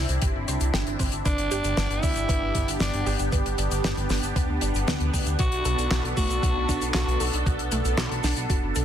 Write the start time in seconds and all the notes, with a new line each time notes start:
Already playing: C4 D4 E4
0.08 C2, closed hi-hat, shaker
0.22 G1 G4, kick, closed hi-hat, shaker
0.35 G1
0.48 C2 C5, closed hi-hat, shaker
0.60 C2, closed hi-hat, shaker
0.74 G1 G4, snare, closed hi-hat, shaker
0.87 G1, closed hi-hat
0.99 G1 C4, kick, open hi-hat, shaker
1.12 G1, closed hi-hat, shaker
1.25 G1 B3 D4 G4 B4, kick, closed hi-hat, shaker
1.38 G1, closed hi-hat
1.51 G1 G4, closed hi-hat, shaker
1.64 G1, closed hi-hat, shaker
1.77 G1 B4, snare, closed hi-hat, shaker
1.90 G1, closed hi-hat
2.03 D2 E4 D5, kick, open hi-hat, shaker
2.16 G1, closed hi-hat, shaker
2.29 G1 B4, kick, closed hi-hat, shaker
2.42 G1
2.55 G1 B3, kick, closed hi-hat, shaker
2.68 G1, closed hi-hat, shaker
2.80 G1 D4 B4, snare, closed hi-hat, shaker
2.94 G1, closed hi-hat
3.06 G1 G4, open hi-hat, shaker
3.19 G1, closed hi-hat, shaker
3.32 G1 B4, kick, closed hi-hat, shaker
3.45 G1, closed hi-hat
3.58 G1 D5, closed hi-hat, shaker
3.71 G1, closed hi-hat, shaker
3.84 G1 B4, snare, closed hi-hat, shaker
3.97 G1, closed hi-hat
4.10 G1 B3, snare, open hi-hat, shaker
4.23 G1, closed hi-hat, shaker
4.36 D2 B4, kick, closed hi-hat, shaker
4.49 D2
4.61 G1 D4, closed hi-hat, shaker
4.74 G1, closed hi-hat, shaker
4.88 D2 B3, snare, closed hi-hat, shaker
5.00 D2, closed hi-hat
5.13 D2 G5, kick, open hi-hat, shaker
5.26 D2, closed hi-hat, shaker
5.39 B1 F#4 A4, kick, closed hi-hat, shaker
5.52 B1, closed hi-hat
5.65 B1 A4, closed hi-hat, shaker
5.78 B1, closed hi-hat, shaker
5.91 B1 F#4, snare, clap, closed hi-hat, shaker
6.04 B1, closed hi-hat
6.17 F#1 A3 F#4, kick, open hi-hat, shaker
6.30 B1, closed hi-hat, shaker
6.43 B1 F#4, kick, closed hi-hat, shaker
6.56 B1
6.69 B1 D4, kick, closed hi-hat, shaker
6.81 B1, closed hi-hat, shaker
6.94 B1 F#4, snare, clap, closed hi-hat, shaker
7.07 B1, closed hi-hat
7.20 B1 A4, open hi-hat, shaker
7.33 B1, closed hi-hat, shaker
7.46 B1 F#4, kick, closed hi-hat, shaker
7.59 B1, closed hi-hat
7.72 B1 A3, closed hi-hat, shaker
7.85 B1, closed hi-hat, shaker
7.98 B1 F#4, snare, clap, closed hi-hat, shaker
8.11 B1, closed hi-hat
8.24 B1 D4, snare, open hi-hat, shaker
8.36 B1, closed hi-hat, shaker
8.50 F#1 F#4, kick, closed hi-hat, shaker
8.62 F#1
8.75 B1 A4, closed hi-hat, shaker